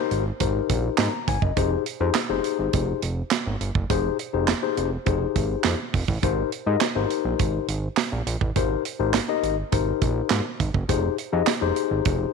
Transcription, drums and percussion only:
0.11 closed hi-hat medium
0.40 kick loud
0.40 closed hi-hat medium
0.70 kick medium
0.70 closed hi-hat loud
0.98 snare loud
0.98 clap loud
0.98 closed hi-hat loud
1.28 kick loud
1.28 closed hi-hat medium
1.42 kick loud
1.57 kick loud
1.57 closed hi-hat medium
1.86 closed hi-hat medium
2.14 snare loud
2.14 clap loud
2.14 closed hi-hat loud
2.44 closed hi-hat medium
2.73 kick loud
2.73 closed hi-hat medium
3.02 closed hi-hat medium
3.31 snare loud
3.31 clap loud
3.31 closed hi-hat loud
3.61 closed hi-hat medium
3.75 kick loud
3.90 kick loud
3.90 closed hi-hat medium
4.19 closed hi-hat medium
4.48 snare loud
4.48 clap loud
4.48 closed hi-hat loud
4.77 closed hi-hat medium
5.06 kick loud
5.06 closed hi-hat medium
5.36 kick medium
5.36 closed hi-hat medium
5.64 snare loud
5.64 clap medium
5.64 closed hi-hat loud
5.94 kick loud
5.94 open hi-hat medium
6.08 kick loud
6.23 kick loud
6.23 closed hi-hat medium
6.52 closed hi-hat medium
6.81 snare loud
6.81 clap loud
6.81 closed hi-hat loud
7.10 closed hi-hat medium
7.39 kick loud
7.39 closed hi-hat medium
7.69 closed hi-hat medium
7.97 snare loud
7.97 clap medium
7.97 closed hi-hat loud
8.27 closed hi-hat medium
8.41 kick loud
8.56 kick loud
8.56 closed hi-hat loud
8.85 closed hi-hat medium
9.14 snare loud
9.14 clap loud
9.14 closed hi-hat loud
9.44 closed hi-hat medium
9.72 kick loud
9.72 closed hi-hat medium
10.02 kick medium
10.02 closed hi-hat medium
10.30 snare loud
10.30 clap loud
10.30 closed hi-hat medium
10.60 kick loud
10.60 closed hi-hat medium
10.74 kick loud
10.89 kick loud
10.89 closed hi-hat loud
11.18 closed hi-hat medium
11.47 snare loud
11.47 clap loud
11.47 closed hi-hat loud
11.76 closed hi-hat medium
12.05 kick loud
12.05 closed hi-hat medium

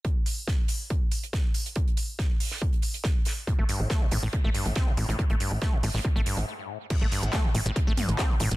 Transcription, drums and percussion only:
0.05 kick loud
0.05 closed hi-hat medium
0.26 closed hi-hat medium
0.26 open hi-hat loud
0.48 kick loud
0.48 snare loud
0.48 closed hi-hat medium
0.68 closed hi-hat medium
0.68 open hi-hat loud
0.90 kick loud
0.90 closed hi-hat medium
1.11 closed hi-hat medium
1.11 open hi-hat loud
1.23 closed hi-hat soft
1.33 kick loud
1.33 snare loud
1.33 closed hi-hat medium
1.54 closed hi-hat medium
1.54 open hi-hat loud
1.66 closed hi-hat soft
1.76 kick loud
1.76 closed hi-hat medium
1.88 closed hi-hat soft
1.97 closed hi-hat medium
1.97 open hi-hat loud
2.19 kick loud
2.19 snare loud
2.19 closed hi-hat medium
2.40 open hi-hat loud
2.40 open hi-hat medium
2.51 snare soft
2.62 kick loud
2.62 closed hi-hat medium
2.73 closed hi-hat soft
2.82 closed hi-hat medium
2.82 open hi-hat loud
2.94 closed hi-hat soft
3.04 kick loud
3.04 snare loud
3.04 closed hi-hat medium
3.25 snare medium
3.25 closed hi-hat medium
3.25 open hi-hat loud
3.47 kick loud
3.47 closed hi-hat medium
3.69 closed hi-hat medium
3.69 open hi-hat loud
3.90 kick loud
3.90 snare loud
3.90 closed hi-hat medium
4.11 closed hi-hat medium
4.11 open hi-hat loud
4.33 kick loud
4.33 closed hi-hat medium
4.54 closed hi-hat medium
4.54 open hi-hat loud
4.66 closed hi-hat soft
4.76 kick loud
4.76 snare loud
4.76 closed hi-hat medium
4.97 closed hi-hat medium
4.97 open hi-hat loud
5.10 closed hi-hat soft
5.19 kick loud
5.19 closed hi-hat medium
5.30 closed hi-hat soft
5.40 closed hi-hat medium
5.40 open hi-hat loud
5.62 kick loud
5.62 snare loud
5.62 closed hi-hat medium
5.83 open hi-hat loud
5.83 open hi-hat medium
5.95 snare soft
6.05 kick loud
6.05 closed hi-hat medium
6.17 closed hi-hat soft
6.26 closed hi-hat medium
6.26 open hi-hat loud
6.37 closed hi-hat soft
6.90 kick loud
6.90 closed hi-hat medium
6.90 crash loud
7.12 closed hi-hat medium
7.12 open hi-hat loud
7.23 closed hi-hat medium
7.33 kick loud
7.33 snare loud
7.33 clap loud
7.33 closed hi-hat medium
7.33 mid tom medium
7.55 closed hi-hat medium
7.55 open hi-hat loud
7.66 closed hi-hat medium
7.76 kick loud
7.76 closed hi-hat medium
7.97 closed hi-hat medium
7.97 open hi-hat loud
7.97 mid tom medium
8.09 closed hi-hat medium
8.09 closed hi-hat soft
8.19 kick loud
8.19 snare loud
8.19 clap loud
8.19 closed hi-hat medium
8.40 closed hi-hat medium
8.40 open hi-hat loud
8.51 closed hi-hat soft
8.51 closed hi-hat medium

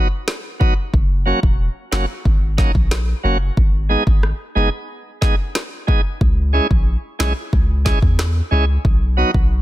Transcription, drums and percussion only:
0.28 cross-stick medium
0.28 snare loud
0.61 kick medium
0.94 kick loud
1.43 kick medium
1.92 cross-stick medium
1.92 snare loud
2.25 kick medium
2.58 kick medium
2.58 snare medium
2.75 kick medium
2.91 cross-stick medium
2.91 snare loud
3.57 kick loud
4.07 kick medium
4.23 cross-stick medium
5.22 kick medium
5.22 snare medium
5.55 cross-stick medium
5.55 snare loud
5.88 kick medium
6.21 kick loud
6.71 kick medium
7.20 cross-stick medium
7.20 snare loud
7.53 kick medium
7.86 kick medium
7.86 snare medium
8.02 kick medium
8.19 cross-stick medium
8.19 snare loud
8.85 kick loud
9.34 kick medium

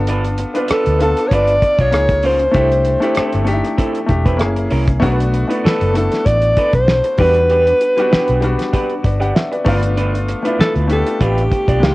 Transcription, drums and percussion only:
0.07 closed hi-hat medium
0.25 closed hi-hat medium
0.38 closed hi-hat medium
0.55 closed hi-hat medium
0.68 cross-stick loud
0.68 closed hi-hat medium
0.86 closed hi-hat medium
1.00 closed hi-hat medium
1.17 cross-stick soft
1.17 closed hi-hat medium
1.31 kick medium
1.31 closed hi-hat medium
1.47 closed hi-hat medium
1.62 kick medium
1.62 closed hi-hat medium
1.79 kick medium
1.79 closed hi-hat soft
1.92 cross-stick medium
1.92 closed hi-hat medium
2.09 kick medium
2.09 closed hi-hat soft
2.23 open hi-hat medium
2.39 closed hi-hat medium
2.54 kick loud
2.54 closed hi-hat medium
2.72 closed hi-hat medium
2.85 closed hi-hat medium
3.02 closed hi-hat medium
3.15 cross-stick loud
3.15 closed hi-hat medium
3.33 closed hi-hat soft
3.47 closed hi-hat medium
3.65 cross-stick soft
3.65 closed hi-hat medium
3.78 kick medium
3.78 closed hi-hat medium
3.95 closed hi-hat medium
4.09 kick medium
4.09 closed hi-hat medium
4.26 kick medium
4.26 closed hi-hat soft
4.39 cross-stick medium
4.39 closed hi-hat medium
4.57 closed hi-hat soft
4.71 open hi-hat medium
4.88 kick medium
4.88 closed hi-hat medium
5.02 kick loud
5.02 closed hi-hat medium
5.20 closed hi-hat medium
5.34 closed hi-hat medium
5.51 closed hi-hat medium
5.66 snare loud
5.81 closed hi-hat soft
5.95 closed hi-hat medium
6.12 snare soft
6.12 closed hi-hat medium
6.26 kick medium
6.26 closed hi-hat medium
6.42 closed hi-hat soft
6.57 kick medium
6.57 closed hi-hat medium
6.73 kick medium
6.73 closed hi-hat soft
6.88 snare medium
7.04 closed hi-hat soft
7.18 kick loud
7.18 open hi-hat medium
7.34 closed hi-hat medium
7.50 closed hi-hat medium
7.67 closed hi-hat medium
7.81 closed hi-hat medium
7.97 closed hi-hat medium
8.13 snare loud
8.28 closed hi-hat soft
8.42 closed hi-hat medium
8.59 snare soft
8.59 closed hi-hat medium
8.74 kick medium
8.74 closed hi-hat medium
8.90 closed hi-hat soft
9.04 kick medium
9.04 closed hi-hat medium
9.22 closed hi-hat soft
9.36 snare medium
9.53 closed hi-hat soft
9.66 kick loud
9.66 open hi-hat medium
9.83 closed hi-hat medium
9.97 closed hi-hat medium
10.15 closed hi-hat medium
10.28 closed hi-hat medium
10.45 closed hi-hat medium
10.61 snare loud
10.75 closed hi-hat medium
10.90 closed hi-hat medium
11.07 closed hi-hat medium
11.21 kick medium
11.21 closed hi-hat medium
11.38 closed hi-hat medium
11.51 kick medium
11.51 closed hi-hat medium
11.68 kick medium
11.68 closed hi-hat soft
11.83 snare medium

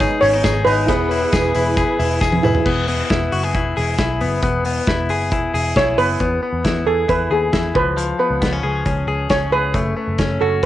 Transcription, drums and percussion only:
0.00 kick loud
0.00 hi-hat pedal medium
0.00 ride soft
0.00 tambourine medium
0.22 open hi-hat medium
0.22 tambourine medium
0.44 kick loud
0.44 snare loud
0.44 ride medium
0.44 tambourine medium
0.67 open hi-hat medium
0.67 tambourine medium
0.88 kick loud
0.88 hi-hat pedal medium
0.88 ride medium
0.88 tambourine soft
1.11 open hi-hat medium
1.11 tambourine soft
1.32 kick loud
1.32 snare loud
1.32 hi-hat pedal medium
1.32 ride medium
1.32 tambourine medium
1.55 open hi-hat medium
1.55 tambourine medium
1.77 kick loud
1.77 hi-hat pedal medium
1.77 ride soft
1.77 tambourine medium
2.00 open hi-hat medium
2.00 tambourine soft
2.21 kick loud
2.21 snare medium
2.21 tambourine medium
2.32 high tom medium
2.43 mid tom medium
2.43 tambourine medium
2.55 floor tom medium
2.66 kick loud
2.66 crash medium
2.88 open hi-hat medium
3.10 kick loud
3.10 snare loud
3.10 closed hi-hat medium
3.32 open hi-hat medium
3.55 kick loud
3.55 closed hi-hat medium
3.77 open hi-hat medium
3.98 kick medium
3.98 snare medium
3.98 closed hi-hat medium
4.21 open hi-hat medium
4.43 kick loud
4.43 closed hi-hat medium
4.65 open hi-hat medium
4.87 kick loud
4.87 snare loud
4.87 closed hi-hat medium
5.09 open hi-hat medium
5.31 kick loud
5.31 closed hi-hat medium
5.54 open hi-hat medium
5.76 kick medium
5.76 snare medium
5.76 closed hi-hat medium
5.98 open hi-hat medium
6.20 kick medium
6.20 closed hi-hat medium
6.64 kick medium
6.64 snare medium
6.64 closed hi-hat medium
7.09 kick medium
7.09 closed hi-hat soft
7.53 kick medium
7.53 snare medium
7.53 closed hi-hat medium
7.75 kick medium
7.97 closed hi-hat medium
8.42 kick loud
8.42 snare medium
8.42 closed hi-hat medium
8.85 kick medium
8.85 closed hi-hat medium
9.29 kick medium
9.29 snare medium
9.29 closed hi-hat medium
9.74 kick loud
9.74 closed hi-hat medium
10.18 kick medium
10.18 snare loud
10.18 closed hi-hat medium

